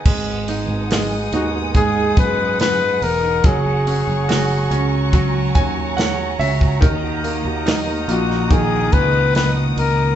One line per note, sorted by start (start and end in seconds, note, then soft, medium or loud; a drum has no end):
0.00 0.17 D#3 medium
0.00 0.48 B3 medium
0.00 0.26 D#4 medium
0.00 0.90 G#4 medium
0.05 0.65 G#1 loud
0.05 1.74 G#2 medium
0.05 0.89 G#3 medium
0.05 3.40 B3 medium
0.05 6.78 F#5 medium
0.05 3.40 G#5 medium
0.05 3.40 D#6 medium
0.05 kick loud
0.05 crash loud
0.26 0.68 D#4 medium
0.48 1.32 B3 medium
0.48 1.32 D#4 soft
0.48 hi-hat pedal medium
0.48 open hi-hat medium
0.69 1.28 G#1 medium
0.69 1.10 D#4 medium
0.90 1.73 G#3 medium
0.90 2.60 G#4 medium
0.90 snare loud
0.90 hi-hat pedal medium
0.90 open hi-hat medium
1.12 1.53 D#4 medium
1.32 2.13 D#2 medium
1.32 2.16 B3 medium
1.32 2.98 D#4 medium
1.32 1.50 F#4 medium
1.32 hi-hat pedal medium
1.32 open hi-hat medium
1.54 1.95 D#4 medium
1.75 3.52 G#2 medium
1.75 3.40 G#3 medium
1.75 2.14 G#4 loud
1.75 kick medium
1.75 hi-hat pedal medium
1.75 open hi-hat medium
1.96 2.38 D#4 medium
2.17 2.97 F#2 medium
2.17 3.01 B3 medium
2.17 2.57 B4 medium
2.17 kick loud
2.17 hi-hat pedal medium
2.17 open hi-hat medium
2.39 2.80 D#4 medium
2.60 3.69 G#4 medium
2.60 3.04 B4 loud
2.60 snare loud
2.60 hi-hat pedal medium
2.60 open hi-hat medium
2.81 3.22 D#4 soft
3.02 3.41 E1 medium
3.02 3.52 B3 medium
3.02 3.47 A#4 loud
3.02 hi-hat pedal medium
3.02 open hi-hat medium
3.23 3.53 D#4 medium
3.44 4.03 F#1 loud
3.44 5.12 F#3 medium
3.44 5.14 F#3 medium
3.44 5.14 G#4 medium
3.44 6.79 G#5 medium
3.44 10.15 A#5 medium
3.44 6.79 C#6 medium
3.44 kick loud
3.44 hi-hat pedal medium
3.44 open hi-hat loud
3.66 4.08 F#4 medium
3.87 4.70 C#4 soft
3.87 4.70 C#4 medium
3.87 hi-hat pedal medium
3.87 open hi-hat medium
4.07 4.67 F#1 medium
4.07 4.50 F#4 medium
4.29 5.93 F#4 medium
4.29 5.96 G#4 medium
4.29 snare loud
4.29 hi-hat pedal medium
4.29 open hi-hat loud
4.50 4.92 F#4 medium
4.71 5.51 C#2 medium
4.71 6.36 C#4 medium
4.71 5.55 C#4 medium
4.71 hi-hat pedal medium
4.71 open hi-hat medium
4.93 5.34 F#4 soft
5.13 6.78 F#3 medium
5.13 6.82 F#3 medium
5.13 kick medium
5.13 hi-hat pedal medium
5.13 open hi-hat loud
5.35 5.77 F#4 medium
5.55 6.36 D#2 medium
5.55 6.39 C#4 medium
5.55 5.94 G#5 medium
5.55 kick medium
5.55 hi-hat pedal medium
5.55 open hi-hat medium
5.77 6.18 F#4 medium
5.97 6.90 G#4 medium
5.97 6.36 F#5 medium
5.97 snare loud
5.97 hi-hat pedal medium
5.97 open hi-hat medium
6.19 6.61 F#4 medium
6.39 6.79 C#2 medium
6.39 6.90 C#4 medium
6.39 6.79 E5 medium
6.39 hi-hat pedal medium
6.39 open hi-hat medium
6.61 7.03 F#4 medium
6.61 kick medium
6.81 7.41 D#2 loud
6.81 8.49 D#3 medium
6.81 8.51 D#3 medium
6.81 10.15 D#5 medium
6.81 10.15 F#5 medium
6.81 10.15 D#6 medium
6.81 kick loud
6.81 hi-hat pedal medium
6.81 open hi-hat medium
7.03 7.45 F#4 medium
7.23 8.89 A#3 soft
7.23 8.08 D#4 medium
7.23 hi-hat pedal medium
7.23 open hi-hat medium
7.45 8.04 D#2 loud
7.45 7.87 F#4 medium
7.66 9.31 D#4 medium
7.66 snare loud
7.66 hi-hat pedal medium
7.66 open hi-hat medium
7.87 8.30 F#4 medium
8.08 8.89 A#1 medium
8.08 9.73 A#2 medium
8.08 8.93 D#4 medium
8.08 8.53 F#4 medium
8.08 hi-hat pedal medium
8.08 open hi-hat medium
8.30 8.72 F#4 medium
8.30 snare soft
8.50 10.15 D#3 medium
8.50 8.94 G#4 loud
8.50 kick loud
8.50 hi-hat pedal medium
8.50 open hi-hat medium
8.72 9.14 F#4 medium
8.92 9.73 C#2 loud
8.92 9.78 D#4 medium
8.92 9.35 B4 loud
8.92 kick medium
8.92 hi-hat pedal medium
8.92 open hi-hat medium
9.14 9.57 F#4 medium
9.35 9.52 B4 loud
9.35 snare loud
9.35 hi-hat pedal medium
9.35 open hi-hat medium
9.57 9.98 F#4 medium
9.77 10.15 C#2 medium
9.77 10.15 D#4 medium
9.77 10.15 A#4 loud
9.77 hi-hat pedal medium
9.77 open hi-hat medium
9.99 10.15 F#4 medium